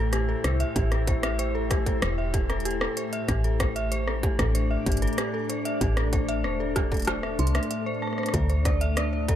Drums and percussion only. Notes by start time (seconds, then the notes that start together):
0.13 cross-stick, closed hi-hat
0.44 cross-stick, closed hi-hat
0.60 closed hi-hat
0.76 kick, closed hi-hat
0.92 cross-stick, closed hi-hat
1.07 kick, closed hi-hat
1.23 cross-stick, closed hi-hat
1.39 closed hi-hat
1.71 kick, cross-stick, closed hi-hat
1.86 kick, closed hi-hat
2.02 cross-stick, closed hi-hat
2.34 kick, closed hi-hat
2.50 cross-stick, closed hi-hat
2.60 closed hi-hat
2.65 closed hi-hat
2.71 closed hi-hat
2.81 cross-stick
2.97 closed hi-hat
3.13 closed hi-hat
3.29 kick, cross-stick, closed hi-hat
3.44 closed hi-hat
3.60 kick, cross-stick, closed hi-hat
3.76 closed hi-hat
3.92 closed hi-hat
4.08 cross-stick
4.23 kick, closed hi-hat
4.39 kick, cross-stick, closed hi-hat
4.55 closed hi-hat
4.86 kick, closed hi-hat
4.92 closed hi-hat
4.97 closed hi-hat
5.02 closed hi-hat
5.07 closed hi-hat
5.13 closed hi-hat
5.18 cross-stick, closed hi-hat
5.50 closed hi-hat
5.65 closed hi-hat
5.81 kick, closed hi-hat
5.97 cross-stick, closed hi-hat
6.13 kick, closed hi-hat
6.29 closed hi-hat
6.44 cross-stick
6.76 kick, cross-stick, closed hi-hat
6.92 kick, closed hi-hat
6.94 closed hi-hat
6.97 closed hi-hat
7.00 closed hi-hat
7.02 closed hi-hat
7.05 cross-stick, closed hi-hat
7.07 closed hi-hat
7.23 cross-stick
7.39 closed hi-hat
7.47 closed hi-hat
7.55 cross-stick, closed hi-hat
7.63 closed hi-hat
7.71 closed hi-hat
8.02 cross-stick
8.07 cross-stick
8.13 cross-stick
8.18 cross-stick
8.23 cross-stick, closed hi-hat
8.29 cross-stick
8.34 kick, closed hi-hat
8.50 closed hi-hat
8.65 kick, cross-stick, closed hi-hat
8.81 closed hi-hat
8.97 cross-stick, closed hi-hat
9.29 kick, closed hi-hat